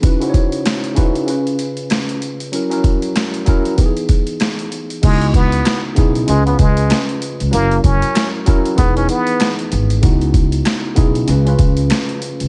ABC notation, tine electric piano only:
X:1
M:4/4
L:1/16
Q:"Swing 16ths" 1/4=96
K:C#dor
V:1 name="Tine electric piano"
[C,CDEFB] [C,CDEF^Bc]4- [C,CDEFBc] [C,CDEF=B]2 [C,C^EB]8 | [F,CEA] [F,CEA]4- [F,CEA] [F,CEA]2 [E,B,D=G^G]8 | [C,B,DEF]6 [C,B,DEG]2 [C,C^EB] [C,CEB]6- [C,CEB] | [F,CEA]6 [F,CEA]2 [E,B,DG] [E,B,DB]6- [E,B,DB] |
[C,B,DEF]6 [C,B,DEG]2 [C,C^EB] [C,CEB]6- [C,CEB] |]